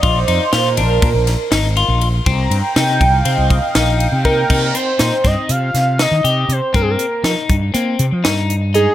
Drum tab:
CC |---------|---------|x--------|---------|
RD |xxxxxxxxx|xxxxxxxxx|---------|---------|
HH |---------|---------|-xxxxxxxx|xxxxxxxxx|
SD |--o--oo--|--o---o--|--oo-oo--|--o---o--|
BD |o---o----|o--o-o--o|o--o-----|o--o-----|